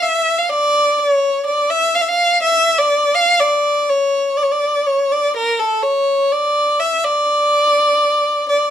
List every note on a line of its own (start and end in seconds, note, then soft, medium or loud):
0.02 0.40 E5 medium
0.38 0.51 F5 medium
0.49 0.99 D5 medium
0.98 1.45 C#5 medium
1.46 1.72 D5 medium
1.70 1.96 E5 medium
1.95 2.03 F5 medium
2.01 2.10 E5 medium
2.08 2.42 F5 medium
2.42 2.80 E5 medium
2.78 3.16 D5 medium
3.15 3.41 F5 medium
3.39 3.90 D5 medium
3.89 4.39 C#5 medium
4.37 4.44 D5 medium
4.43 4.53 C#5 medium
4.51 4.88 D5 medium
4.86 5.13 C#5 medium
5.12 5.35 D5 medium
5.36 5.61 A#4 medium
5.59 5.84 A4 medium
5.83 6.33 C#5 medium
6.32 6.82 D5 medium
6.80 7.06 E5 medium
7.04 8.48 D5 medium
8.49 8.70 D5 medium